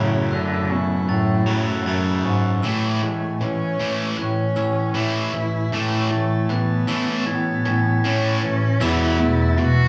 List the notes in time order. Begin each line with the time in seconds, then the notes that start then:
Already playing: F#2 A2 C#3 F#3 A3 E4 A4 F#5
0.32 D3 F#3 F#6
0.70 B2 C#4
1.08 A2 F#3 A6
1.46 F#2 C#3 F#3 E4
1.85 F#2 C#3 F#3 A6
2.25 G#2 C#4
2.63 A2 E3 A3 C#4 C#5 G#5 E6
3.02 A2 E3 G#3
3.40 A2 E3 C#4
3.79 A2 E3 A3 C#4
4.17 A2 E3 C#4 F#6
4.56 A2 E3 C#4 E6
4.94 A2 E3 A3 E4
5.33 A2 E3
5.72 A2 E3 A3 A5
6.11 A2 E3
6.49 A2 E3 B3 F#6
6.87 A2 E3 A3 C#4 E6
7.26 A2 E3 B3 G#6
7.65 A2 E3 C#4 G#6
8.04 A2 E3 A3 C#4
8.42 A2 E3
8.80 E2 B2 E3 E4 B4 E6
9.19 E2 B2 A3
9.58 E2 B2 E3 F#4